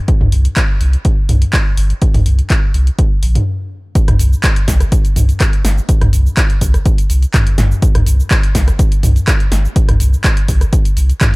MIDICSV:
0, 0, Header, 1, 3, 480
1, 0, Start_track
1, 0, Tempo, 483871
1, 81, Time_signature, 4, 2, 24, 8
1, 11267, End_track
2, 0, Start_track
2, 0, Title_t, "Sub bass"
2, 0, Program_c, 0, 38
2, 208, Note_on_c, 0, 36, 97
2, 278, Note_off_c, 0, 36, 0
2, 321, Note_on_c, 0, 36, 91
2, 475, Note_off_c, 0, 36, 0
2, 802, Note_on_c, 0, 36, 96
2, 955, Note_off_c, 0, 36, 0
2, 1281, Note_on_c, 0, 36, 86
2, 1435, Note_off_c, 0, 36, 0
2, 1761, Note_on_c, 0, 31, 99
2, 1915, Note_off_c, 0, 31, 0
2, 2127, Note_on_c, 0, 36, 100
2, 2198, Note_off_c, 0, 36, 0
2, 2242, Note_on_c, 0, 36, 88
2, 2395, Note_off_c, 0, 36, 0
2, 2722, Note_on_c, 0, 36, 94
2, 2875, Note_off_c, 0, 36, 0
2, 3202, Note_on_c, 0, 34, 86
2, 3355, Note_off_c, 0, 34, 0
2, 4047, Note_on_c, 0, 36, 99
2, 4118, Note_off_c, 0, 36, 0
2, 4161, Note_on_c, 0, 36, 89
2, 4315, Note_off_c, 0, 36, 0
2, 4641, Note_on_c, 0, 36, 94
2, 4795, Note_off_c, 0, 36, 0
2, 5121, Note_on_c, 0, 36, 84
2, 5275, Note_off_c, 0, 36, 0
2, 5601, Note_on_c, 0, 31, 95
2, 5755, Note_off_c, 0, 31, 0
2, 5967, Note_on_c, 0, 36, 100
2, 6038, Note_off_c, 0, 36, 0
2, 6081, Note_on_c, 0, 36, 88
2, 6235, Note_off_c, 0, 36, 0
2, 6561, Note_on_c, 0, 36, 96
2, 6715, Note_off_c, 0, 36, 0
2, 7042, Note_on_c, 0, 36, 85
2, 7195, Note_off_c, 0, 36, 0
2, 7521, Note_on_c, 0, 31, 95
2, 7675, Note_off_c, 0, 31, 0
2, 7887, Note_on_c, 0, 36, 96
2, 7958, Note_off_c, 0, 36, 0
2, 8001, Note_on_c, 0, 36, 91
2, 8155, Note_off_c, 0, 36, 0
2, 8482, Note_on_c, 0, 36, 97
2, 8635, Note_off_c, 0, 36, 0
2, 8961, Note_on_c, 0, 36, 87
2, 9115, Note_off_c, 0, 36, 0
2, 9441, Note_on_c, 0, 31, 96
2, 9595, Note_off_c, 0, 31, 0
2, 9808, Note_on_c, 0, 36, 99
2, 9878, Note_off_c, 0, 36, 0
2, 9921, Note_on_c, 0, 36, 89
2, 10075, Note_off_c, 0, 36, 0
2, 10402, Note_on_c, 0, 36, 95
2, 10555, Note_off_c, 0, 36, 0
2, 10881, Note_on_c, 0, 36, 85
2, 11035, Note_off_c, 0, 36, 0
2, 11267, End_track
3, 0, Start_track
3, 0, Title_t, "Drums"
3, 80, Note_on_c, 9, 42, 66
3, 81, Note_on_c, 9, 36, 111
3, 179, Note_off_c, 9, 42, 0
3, 181, Note_off_c, 9, 36, 0
3, 207, Note_on_c, 9, 45, 83
3, 306, Note_off_c, 9, 45, 0
3, 320, Note_on_c, 9, 46, 102
3, 420, Note_off_c, 9, 46, 0
3, 446, Note_on_c, 9, 42, 52
3, 546, Note_off_c, 9, 42, 0
3, 560, Note_on_c, 9, 42, 66
3, 561, Note_on_c, 9, 36, 111
3, 561, Note_on_c, 9, 39, 115
3, 659, Note_off_c, 9, 42, 0
3, 661, Note_off_c, 9, 36, 0
3, 661, Note_off_c, 9, 39, 0
3, 800, Note_on_c, 9, 46, 97
3, 899, Note_off_c, 9, 46, 0
3, 926, Note_on_c, 9, 42, 55
3, 1026, Note_off_c, 9, 42, 0
3, 1040, Note_on_c, 9, 42, 63
3, 1041, Note_on_c, 9, 36, 110
3, 1139, Note_off_c, 9, 42, 0
3, 1141, Note_off_c, 9, 36, 0
3, 1280, Note_on_c, 9, 45, 80
3, 1280, Note_on_c, 9, 46, 100
3, 1379, Note_off_c, 9, 45, 0
3, 1379, Note_off_c, 9, 46, 0
3, 1406, Note_on_c, 9, 42, 54
3, 1505, Note_off_c, 9, 42, 0
3, 1520, Note_on_c, 9, 46, 56
3, 1521, Note_on_c, 9, 36, 112
3, 1522, Note_on_c, 9, 39, 114
3, 1620, Note_off_c, 9, 46, 0
3, 1621, Note_off_c, 9, 36, 0
3, 1621, Note_off_c, 9, 39, 0
3, 1760, Note_on_c, 9, 46, 105
3, 1860, Note_off_c, 9, 46, 0
3, 1886, Note_on_c, 9, 42, 53
3, 1985, Note_off_c, 9, 42, 0
3, 2000, Note_on_c, 9, 42, 67
3, 2002, Note_on_c, 9, 36, 113
3, 2099, Note_off_c, 9, 42, 0
3, 2101, Note_off_c, 9, 36, 0
3, 2127, Note_on_c, 9, 45, 86
3, 2127, Note_on_c, 9, 46, 59
3, 2226, Note_off_c, 9, 45, 0
3, 2226, Note_off_c, 9, 46, 0
3, 2241, Note_on_c, 9, 46, 98
3, 2340, Note_off_c, 9, 46, 0
3, 2367, Note_on_c, 9, 42, 54
3, 2467, Note_off_c, 9, 42, 0
3, 2481, Note_on_c, 9, 42, 65
3, 2482, Note_on_c, 9, 36, 111
3, 2483, Note_on_c, 9, 39, 117
3, 2580, Note_off_c, 9, 42, 0
3, 2581, Note_off_c, 9, 36, 0
3, 2582, Note_off_c, 9, 39, 0
3, 2721, Note_on_c, 9, 46, 99
3, 2821, Note_off_c, 9, 46, 0
3, 2848, Note_on_c, 9, 42, 54
3, 2947, Note_off_c, 9, 42, 0
3, 2962, Note_on_c, 9, 36, 111
3, 2962, Note_on_c, 9, 42, 67
3, 3061, Note_off_c, 9, 36, 0
3, 3061, Note_off_c, 9, 42, 0
3, 3201, Note_on_c, 9, 46, 100
3, 3300, Note_off_c, 9, 46, 0
3, 3327, Note_on_c, 9, 42, 52
3, 3327, Note_on_c, 9, 45, 84
3, 3427, Note_off_c, 9, 42, 0
3, 3427, Note_off_c, 9, 45, 0
3, 3921, Note_on_c, 9, 42, 84
3, 3922, Note_on_c, 9, 36, 117
3, 3929, Note_on_c, 9, 69, 45
3, 4021, Note_off_c, 9, 36, 0
3, 4021, Note_off_c, 9, 42, 0
3, 4028, Note_off_c, 9, 69, 0
3, 4048, Note_on_c, 9, 37, 61
3, 4048, Note_on_c, 9, 42, 56
3, 4048, Note_on_c, 9, 45, 91
3, 4147, Note_off_c, 9, 37, 0
3, 4147, Note_off_c, 9, 42, 0
3, 4147, Note_off_c, 9, 45, 0
3, 4161, Note_on_c, 9, 46, 105
3, 4168, Note_on_c, 9, 69, 79
3, 4260, Note_off_c, 9, 46, 0
3, 4267, Note_off_c, 9, 69, 0
3, 4294, Note_on_c, 9, 69, 33
3, 4393, Note_off_c, 9, 69, 0
3, 4401, Note_on_c, 9, 36, 120
3, 4401, Note_on_c, 9, 42, 79
3, 4402, Note_on_c, 9, 39, 123
3, 4408, Note_on_c, 9, 69, 44
3, 4500, Note_off_c, 9, 36, 0
3, 4500, Note_off_c, 9, 42, 0
3, 4501, Note_off_c, 9, 39, 0
3, 4507, Note_off_c, 9, 69, 0
3, 4527, Note_on_c, 9, 42, 55
3, 4626, Note_off_c, 9, 42, 0
3, 4641, Note_on_c, 9, 36, 62
3, 4641, Note_on_c, 9, 38, 59
3, 4641, Note_on_c, 9, 46, 107
3, 4648, Note_on_c, 9, 69, 76
3, 4740, Note_off_c, 9, 36, 0
3, 4740, Note_off_c, 9, 38, 0
3, 4740, Note_off_c, 9, 46, 0
3, 4747, Note_off_c, 9, 69, 0
3, 4766, Note_on_c, 9, 37, 40
3, 4766, Note_on_c, 9, 42, 39
3, 4774, Note_on_c, 9, 69, 33
3, 4866, Note_off_c, 9, 37, 0
3, 4866, Note_off_c, 9, 42, 0
3, 4873, Note_off_c, 9, 69, 0
3, 4880, Note_on_c, 9, 42, 81
3, 4881, Note_on_c, 9, 36, 120
3, 4887, Note_on_c, 9, 69, 44
3, 4979, Note_off_c, 9, 42, 0
3, 4980, Note_off_c, 9, 36, 0
3, 4987, Note_off_c, 9, 69, 0
3, 5007, Note_on_c, 9, 42, 55
3, 5014, Note_on_c, 9, 69, 31
3, 5106, Note_off_c, 9, 42, 0
3, 5113, Note_off_c, 9, 69, 0
3, 5121, Note_on_c, 9, 45, 87
3, 5121, Note_on_c, 9, 46, 107
3, 5128, Note_on_c, 9, 69, 80
3, 5220, Note_off_c, 9, 45, 0
3, 5220, Note_off_c, 9, 46, 0
3, 5227, Note_off_c, 9, 69, 0
3, 5247, Note_on_c, 9, 42, 39
3, 5254, Note_on_c, 9, 69, 33
3, 5346, Note_off_c, 9, 42, 0
3, 5353, Note_off_c, 9, 69, 0
3, 5361, Note_on_c, 9, 36, 118
3, 5361, Note_on_c, 9, 37, 61
3, 5361, Note_on_c, 9, 42, 84
3, 5362, Note_on_c, 9, 39, 127
3, 5368, Note_on_c, 9, 69, 45
3, 5460, Note_off_c, 9, 36, 0
3, 5460, Note_off_c, 9, 37, 0
3, 5460, Note_off_c, 9, 42, 0
3, 5461, Note_off_c, 9, 39, 0
3, 5467, Note_off_c, 9, 69, 0
3, 5487, Note_on_c, 9, 42, 54
3, 5586, Note_off_c, 9, 42, 0
3, 5601, Note_on_c, 9, 38, 62
3, 5601, Note_on_c, 9, 46, 111
3, 5608, Note_on_c, 9, 69, 81
3, 5700, Note_off_c, 9, 38, 0
3, 5700, Note_off_c, 9, 46, 0
3, 5707, Note_off_c, 9, 69, 0
3, 5734, Note_on_c, 9, 69, 33
3, 5833, Note_off_c, 9, 69, 0
3, 5840, Note_on_c, 9, 42, 80
3, 5841, Note_on_c, 9, 36, 122
3, 5847, Note_on_c, 9, 69, 43
3, 5940, Note_off_c, 9, 36, 0
3, 5940, Note_off_c, 9, 42, 0
3, 5947, Note_off_c, 9, 69, 0
3, 5967, Note_on_c, 9, 37, 63
3, 5967, Note_on_c, 9, 42, 56
3, 5967, Note_on_c, 9, 45, 90
3, 6066, Note_off_c, 9, 37, 0
3, 6066, Note_off_c, 9, 42, 0
3, 6066, Note_off_c, 9, 45, 0
3, 6081, Note_on_c, 9, 46, 109
3, 6088, Note_on_c, 9, 69, 75
3, 6180, Note_off_c, 9, 46, 0
3, 6187, Note_off_c, 9, 69, 0
3, 6214, Note_on_c, 9, 69, 32
3, 6313, Note_off_c, 9, 69, 0
3, 6321, Note_on_c, 9, 36, 126
3, 6321, Note_on_c, 9, 42, 78
3, 6322, Note_on_c, 9, 39, 122
3, 6328, Note_on_c, 9, 69, 42
3, 6420, Note_off_c, 9, 36, 0
3, 6420, Note_off_c, 9, 42, 0
3, 6421, Note_off_c, 9, 39, 0
3, 6427, Note_off_c, 9, 69, 0
3, 6446, Note_on_c, 9, 42, 56
3, 6545, Note_off_c, 9, 42, 0
3, 6560, Note_on_c, 9, 46, 111
3, 6561, Note_on_c, 9, 36, 64
3, 6568, Note_on_c, 9, 69, 72
3, 6660, Note_off_c, 9, 36, 0
3, 6660, Note_off_c, 9, 46, 0
3, 6667, Note_off_c, 9, 69, 0
3, 6687, Note_on_c, 9, 37, 40
3, 6687, Note_on_c, 9, 42, 37
3, 6694, Note_on_c, 9, 69, 33
3, 6786, Note_off_c, 9, 37, 0
3, 6786, Note_off_c, 9, 42, 0
3, 6794, Note_off_c, 9, 69, 0
3, 6800, Note_on_c, 9, 42, 79
3, 6801, Note_on_c, 9, 36, 126
3, 6808, Note_on_c, 9, 69, 43
3, 6900, Note_off_c, 9, 36, 0
3, 6900, Note_off_c, 9, 42, 0
3, 6907, Note_off_c, 9, 69, 0
3, 6927, Note_on_c, 9, 42, 55
3, 6934, Note_on_c, 9, 69, 30
3, 7027, Note_off_c, 9, 42, 0
3, 7034, Note_off_c, 9, 69, 0
3, 7041, Note_on_c, 9, 46, 109
3, 7048, Note_on_c, 9, 69, 73
3, 7140, Note_off_c, 9, 46, 0
3, 7147, Note_off_c, 9, 69, 0
3, 7167, Note_on_c, 9, 42, 37
3, 7174, Note_on_c, 9, 69, 32
3, 7266, Note_off_c, 9, 42, 0
3, 7273, Note_off_c, 9, 69, 0
3, 7280, Note_on_c, 9, 37, 63
3, 7280, Note_on_c, 9, 42, 81
3, 7280, Note_on_c, 9, 45, 98
3, 7281, Note_on_c, 9, 36, 127
3, 7282, Note_on_c, 9, 39, 127
3, 7288, Note_on_c, 9, 69, 42
3, 7380, Note_off_c, 9, 37, 0
3, 7380, Note_off_c, 9, 42, 0
3, 7380, Note_off_c, 9, 45, 0
3, 7381, Note_off_c, 9, 36, 0
3, 7381, Note_off_c, 9, 39, 0
3, 7387, Note_off_c, 9, 69, 0
3, 7407, Note_on_c, 9, 42, 53
3, 7506, Note_off_c, 9, 42, 0
3, 7520, Note_on_c, 9, 38, 62
3, 7520, Note_on_c, 9, 45, 100
3, 7520, Note_on_c, 9, 46, 113
3, 7527, Note_on_c, 9, 69, 80
3, 7619, Note_off_c, 9, 38, 0
3, 7619, Note_off_c, 9, 45, 0
3, 7619, Note_off_c, 9, 46, 0
3, 7626, Note_off_c, 9, 69, 0
3, 7653, Note_on_c, 9, 69, 33
3, 7753, Note_off_c, 9, 69, 0
3, 7761, Note_on_c, 9, 36, 125
3, 7761, Note_on_c, 9, 42, 78
3, 7768, Note_on_c, 9, 69, 43
3, 7860, Note_off_c, 9, 42, 0
3, 7861, Note_off_c, 9, 36, 0
3, 7867, Note_off_c, 9, 69, 0
3, 7887, Note_on_c, 9, 37, 64
3, 7887, Note_on_c, 9, 42, 54
3, 7887, Note_on_c, 9, 45, 87
3, 7986, Note_off_c, 9, 37, 0
3, 7986, Note_off_c, 9, 42, 0
3, 7986, Note_off_c, 9, 45, 0
3, 8001, Note_on_c, 9, 46, 110
3, 8008, Note_on_c, 9, 69, 76
3, 8100, Note_off_c, 9, 46, 0
3, 8107, Note_off_c, 9, 69, 0
3, 8134, Note_on_c, 9, 69, 31
3, 8233, Note_off_c, 9, 69, 0
3, 8241, Note_on_c, 9, 36, 124
3, 8241, Note_on_c, 9, 42, 77
3, 8242, Note_on_c, 9, 39, 119
3, 8248, Note_on_c, 9, 69, 41
3, 8340, Note_off_c, 9, 36, 0
3, 8340, Note_off_c, 9, 42, 0
3, 8341, Note_off_c, 9, 39, 0
3, 8347, Note_off_c, 9, 69, 0
3, 8367, Note_on_c, 9, 42, 52
3, 8466, Note_off_c, 9, 42, 0
3, 8481, Note_on_c, 9, 36, 64
3, 8481, Note_on_c, 9, 38, 63
3, 8481, Note_on_c, 9, 46, 111
3, 8488, Note_on_c, 9, 69, 73
3, 8580, Note_off_c, 9, 38, 0
3, 8580, Note_off_c, 9, 46, 0
3, 8581, Note_off_c, 9, 36, 0
3, 8587, Note_off_c, 9, 69, 0
3, 8607, Note_on_c, 9, 37, 42
3, 8607, Note_on_c, 9, 42, 37
3, 8615, Note_on_c, 9, 69, 33
3, 8707, Note_off_c, 9, 37, 0
3, 8707, Note_off_c, 9, 42, 0
3, 8714, Note_off_c, 9, 69, 0
3, 8721, Note_on_c, 9, 36, 127
3, 8721, Note_on_c, 9, 42, 77
3, 8728, Note_on_c, 9, 69, 41
3, 8820, Note_off_c, 9, 36, 0
3, 8820, Note_off_c, 9, 42, 0
3, 8828, Note_off_c, 9, 69, 0
3, 8847, Note_on_c, 9, 42, 51
3, 8854, Note_on_c, 9, 69, 31
3, 8946, Note_off_c, 9, 42, 0
3, 8953, Note_off_c, 9, 69, 0
3, 8960, Note_on_c, 9, 45, 86
3, 8960, Note_on_c, 9, 46, 108
3, 8967, Note_on_c, 9, 69, 74
3, 9060, Note_off_c, 9, 45, 0
3, 9060, Note_off_c, 9, 46, 0
3, 9067, Note_off_c, 9, 69, 0
3, 9087, Note_on_c, 9, 42, 36
3, 9094, Note_on_c, 9, 69, 32
3, 9186, Note_off_c, 9, 42, 0
3, 9193, Note_off_c, 9, 69, 0
3, 9201, Note_on_c, 9, 36, 123
3, 9201, Note_on_c, 9, 37, 62
3, 9201, Note_on_c, 9, 42, 77
3, 9202, Note_on_c, 9, 39, 120
3, 9208, Note_on_c, 9, 69, 43
3, 9300, Note_off_c, 9, 36, 0
3, 9300, Note_off_c, 9, 37, 0
3, 9300, Note_off_c, 9, 42, 0
3, 9301, Note_off_c, 9, 39, 0
3, 9307, Note_off_c, 9, 69, 0
3, 9327, Note_on_c, 9, 42, 51
3, 9426, Note_off_c, 9, 42, 0
3, 9441, Note_on_c, 9, 38, 66
3, 9441, Note_on_c, 9, 46, 115
3, 9448, Note_on_c, 9, 69, 75
3, 9540, Note_off_c, 9, 38, 0
3, 9540, Note_off_c, 9, 46, 0
3, 9547, Note_off_c, 9, 69, 0
3, 9574, Note_on_c, 9, 69, 32
3, 9673, Note_off_c, 9, 69, 0
3, 9681, Note_on_c, 9, 36, 126
3, 9681, Note_on_c, 9, 42, 77
3, 9688, Note_on_c, 9, 69, 43
3, 9780, Note_off_c, 9, 36, 0
3, 9780, Note_off_c, 9, 42, 0
3, 9787, Note_off_c, 9, 69, 0
3, 9807, Note_on_c, 9, 37, 63
3, 9807, Note_on_c, 9, 42, 50
3, 9807, Note_on_c, 9, 45, 86
3, 9906, Note_off_c, 9, 37, 0
3, 9906, Note_off_c, 9, 42, 0
3, 9906, Note_off_c, 9, 45, 0
3, 9921, Note_on_c, 9, 46, 111
3, 9928, Note_on_c, 9, 69, 79
3, 10020, Note_off_c, 9, 46, 0
3, 10027, Note_off_c, 9, 69, 0
3, 10054, Note_on_c, 9, 69, 34
3, 10153, Note_off_c, 9, 69, 0
3, 10161, Note_on_c, 9, 36, 124
3, 10161, Note_on_c, 9, 42, 73
3, 10162, Note_on_c, 9, 39, 118
3, 10168, Note_on_c, 9, 69, 42
3, 10260, Note_off_c, 9, 42, 0
3, 10261, Note_off_c, 9, 36, 0
3, 10261, Note_off_c, 9, 39, 0
3, 10267, Note_off_c, 9, 69, 0
3, 10286, Note_on_c, 9, 42, 51
3, 10386, Note_off_c, 9, 42, 0
3, 10400, Note_on_c, 9, 46, 105
3, 10401, Note_on_c, 9, 36, 63
3, 10407, Note_on_c, 9, 69, 72
3, 10499, Note_off_c, 9, 46, 0
3, 10501, Note_off_c, 9, 36, 0
3, 10506, Note_off_c, 9, 69, 0
3, 10527, Note_on_c, 9, 37, 41
3, 10527, Note_on_c, 9, 42, 36
3, 10534, Note_on_c, 9, 69, 33
3, 10626, Note_off_c, 9, 37, 0
3, 10626, Note_off_c, 9, 42, 0
3, 10633, Note_off_c, 9, 69, 0
3, 10641, Note_on_c, 9, 36, 124
3, 10641, Note_on_c, 9, 42, 74
3, 10648, Note_on_c, 9, 69, 41
3, 10740, Note_off_c, 9, 36, 0
3, 10740, Note_off_c, 9, 42, 0
3, 10747, Note_off_c, 9, 69, 0
3, 10766, Note_on_c, 9, 42, 51
3, 10774, Note_on_c, 9, 69, 31
3, 10866, Note_off_c, 9, 42, 0
3, 10873, Note_off_c, 9, 69, 0
3, 10880, Note_on_c, 9, 46, 110
3, 10887, Note_on_c, 9, 69, 75
3, 10979, Note_off_c, 9, 46, 0
3, 10986, Note_off_c, 9, 69, 0
3, 11007, Note_on_c, 9, 42, 35
3, 11014, Note_on_c, 9, 69, 33
3, 11106, Note_off_c, 9, 42, 0
3, 11113, Note_off_c, 9, 69, 0
3, 11121, Note_on_c, 9, 37, 60
3, 11121, Note_on_c, 9, 42, 76
3, 11121, Note_on_c, 9, 45, 94
3, 11122, Note_on_c, 9, 36, 123
3, 11122, Note_on_c, 9, 39, 117
3, 11128, Note_on_c, 9, 69, 45
3, 11220, Note_off_c, 9, 37, 0
3, 11220, Note_off_c, 9, 42, 0
3, 11220, Note_off_c, 9, 45, 0
3, 11221, Note_off_c, 9, 36, 0
3, 11221, Note_off_c, 9, 39, 0
3, 11227, Note_off_c, 9, 69, 0
3, 11267, End_track
0, 0, End_of_file